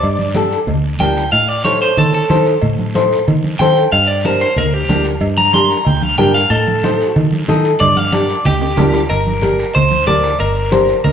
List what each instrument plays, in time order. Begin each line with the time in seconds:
Already playing: clean electric guitar D5
0.03 fingered electric bass G2, cowbell, high conga, long guiro
0.19 high conga
0.35 nylon-string guitar D4 G4 A4, cowbell, high conga, short guiro
0.52 short guiro
0.67 fingered electric bass D2, cowbell, high conga, low conga, long guiro
0.99 fingered electric bass D2, nylon-string guitar D4 G4 A#4, clean electric guitar G5, cowbell, high conga, low timbale, short guiro
1.17 short guiro
1.32 fingered electric bass A2, clean electric guitar F5, cowbell, high conga, long guiro
1.48 clean electric guitar D5
1.64 nylon-string guitar D#4 A4 C5, clean electric guitar C#5, cowbell, high conga, short guiro
1.82 clean electric guitar C5, short guiro
1.97 fingered electric bass D#3, clean electric guitar A4, cowbell, high conga, low conga, long guiro
2.14 clean electric guitar A4
2.29 fingered electric bass D#3, nylon-string guitar D#4 A4 C5, cowbell, high conga, short guiro
2.46 short guiro
2.62 fingered electric bass A2, cowbell, high conga, low conga, long guiro
2.79 high conga
2.94 nylon-string guitar D#4 A4 C5, cowbell, high conga, short guiro
3.12 short guiro
3.28 fingered electric bass D#3, cowbell, high conga, low conga, long guiro
3.44 high conga
3.59 fingered electric bass D#3, nylon-string guitar D#4 A4 C5, clean electric guitar G5, cowbell, high conga, short guiro
3.77 short guiro
3.92 fingered electric bass G2, clean electric guitar F5, cowbell, high conga, long guiro
4.07 clean electric guitar D5
4.24 nylon-string guitar D4 G4 A#4, clean electric guitar C5, cowbell, high conga, short guiro
4.40 clean electric guitar C5, short guiro
4.56 fingered electric bass D2, clean electric guitar A#4, cowbell, high conga, low conga, long guiro
4.74 clean electric guitar G4
4.89 fingered electric bass D2, nylon-string guitar D4 G4 A#4, cowbell, high conga, low timbale, short guiro
5.04 short guiro
5.21 fingered electric bass G2, cowbell, high conga, long guiro
5.37 clean electric guitar A#5, high conga
5.53 nylon-string guitar D4 G4 A#4, clean electric guitar C6, cowbell, high conga, short guiro
5.70 clean electric guitar A#5, short guiro
5.85 fingered electric bass D2, clean electric guitar G5, cowbell, high conga, low conga, long guiro
6.03 clean electric guitar F5, high conga
6.18 fingered electric bass G2, nylon-string guitar D4 G4 A#4, clean electric guitar G5, cowbell, high conga, low conga, low timbale, short guiro
6.34 clean electric guitar F5, short guiro
6.50 fingered electric bass A2, clean electric guitar A4, cowbell, high conga, long guiro
6.68 high conga
6.83 nylon-string guitar D#4 A4 C5, cowbell, high conga, short guiro
7.01 short guiro
7.16 fingered electric bass D#3, cowbell, high conga, low conga, long guiro
7.32 high conga
7.48 fingered electric bass D#3, nylon-string guitar D#4 A4 D#5, cowbell, high conga, low timbale, short guiro
7.64 short guiro
7.80 fingered electric bass G2, clean electric guitar D5, cowbell, high conga, low conga, long guiro
7.96 clean electric guitar F5, high conga
8.12 nylon-string guitar D4 G4 A#4, clean electric guitar D5, cowbell, high conga, short guiro
8.29 short guiro
8.45 fingered electric bass D2, clean electric guitar G4, cowbell, high conga, low conga, long guiro
8.62 high timbale
8.77 fingered electric bass D2, nylon-string guitar D4 G4 A#4, cowbell, high conga, low conga, low timbale, short guiro
8.93 low timbale, short guiro
9.09 fingered electric bass G1, clean electric guitar A#4, cowbell, high conga, long guiro
9.27 high conga
9.41 nylon-string guitar D4 G4 A#4, cowbell, high conga, short guiro
9.59 short guiro
9.74 fingered electric bass D2, clean electric guitar C5, cowbell, high conga, low conga, long guiro
9.91 high conga
10.06 fingered electric bass D2, nylon-string guitar D4 G4 A#4, clean electric guitar D5, cowbell, high conga, short guiro
10.23 short guiro
10.39 fingered electric bass G1, clean electric guitar A#4, cowbell, high conga, long guiro
10.71 nylon-string guitar D4 G4 C5, cowbell, high conga, short guiro
10.88 short guiro
11.04 fingered electric bass D2, clean electric guitar A#4, cowbell, high conga, low conga, long guiro